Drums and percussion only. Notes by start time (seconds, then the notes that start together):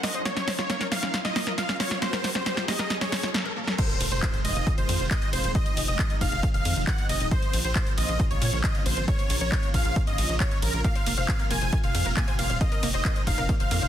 0.03 snare, open hi-hat
0.14 closed hi-hat
0.25 snare, closed hi-hat
0.37 snare, closed hi-hat
0.48 snare, open hi-hat
0.59 snare, closed hi-hat
0.70 snare, closed hi-hat
0.81 snare, closed hi-hat
0.92 snare, open hi-hat
1.03 snare, closed hi-hat
1.14 snare, closed hi-hat
1.25 snare, closed hi-hat
1.36 snare, open hi-hat
1.47 snare, closed hi-hat
1.58 snare, closed hi-hat
1.69 snare, closed hi-hat
1.80 snare, open hi-hat
1.91 snare, closed hi-hat
2.02 snare, closed hi-hat
2.13 snare, closed hi-hat
2.24 snare, open hi-hat
2.35 snare, closed hi-hat
2.46 snare, closed hi-hat
2.57 snare, closed hi-hat
2.68 snare, open hi-hat
2.79 snare, closed hi-hat
2.90 snare, closed hi-hat
3.01 snare, closed hi-hat
3.12 snare, open hi-hat
3.23 snare, closed hi-hat
3.34 snare
3.67 snare
3.79 kick, closed hi-hat, crash
3.90 closed hi-hat
4.01 open hi-hat, ride
4.12 closed hi-hat
4.23 kick, clap, closed hi-hat
4.34 closed hi-hat
4.45 open hi-hat, ride
4.56 closed hi-hat
4.67 kick, closed hi-hat
4.78 closed hi-hat
4.89 open hi-hat, ride
5.00 closed hi-hat
5.11 kick, clap, closed hi-hat
5.22 closed hi-hat
5.33 open hi-hat, ride
5.44 closed hi-hat
5.55 kick, closed hi-hat
5.66 closed hi-hat
5.77 open hi-hat, ride
5.88 closed hi-hat
5.99 kick, clap, closed hi-hat
6.10 closed hi-hat
6.21 kick, open hi-hat, ride
6.32 closed hi-hat
6.43 kick, closed hi-hat
6.54 closed hi-hat
6.65 open hi-hat, ride
6.76 closed hi-hat
6.87 kick, clap, closed hi-hat
6.98 closed hi-hat
7.09 open hi-hat, ride
7.20 closed hi-hat
7.31 kick, closed hi-hat
7.42 closed hi-hat
7.53 open hi-hat, ride
7.65 closed hi-hat
7.76 kick, clap, closed hi-hat
7.87 closed hi-hat
7.98 open hi-hat, ride
8.09 closed hi-hat
8.20 kick, closed hi-hat
8.31 closed hi-hat
8.42 open hi-hat, ride
8.53 closed hi-hat
8.64 kick, clap, closed hi-hat
8.75 closed hi-hat
8.86 open hi-hat, ride
8.97 closed hi-hat
9.08 kick, closed hi-hat
9.19 closed hi-hat
9.30 open hi-hat, ride
9.41 closed hi-hat
9.52 kick, clap, closed hi-hat
9.63 closed hi-hat
9.74 kick, open hi-hat, ride
9.85 closed hi-hat
9.96 kick, closed hi-hat
10.07 closed hi-hat
10.18 open hi-hat, ride
10.29 closed hi-hat
10.40 kick, clap, closed hi-hat
10.51 closed hi-hat
10.62 open hi-hat, ride
10.73 closed hi-hat
10.84 kick, closed hi-hat
10.96 closed hi-hat
11.06 open hi-hat, ride
11.18 closed hi-hat
11.29 kick, clap, closed hi-hat
11.40 closed hi-hat
11.51 open hi-hat, ride
11.62 closed hi-hat
11.73 kick, closed hi-hat
11.84 closed hi-hat
11.95 open hi-hat, ride
12.06 closed hi-hat
12.17 kick, clap, closed hi-hat
12.28 closed hi-hat
12.39 open hi-hat, ride
12.50 closed hi-hat
12.61 kick, closed hi-hat
12.72 closed hi-hat
12.83 open hi-hat, ride
12.94 closed hi-hat
13.05 kick, clap, closed hi-hat
13.16 closed hi-hat
13.27 kick, open hi-hat, ride
13.38 closed hi-hat
13.49 kick, closed hi-hat
13.60 closed hi-hat
13.71 open hi-hat, ride
13.82 closed hi-hat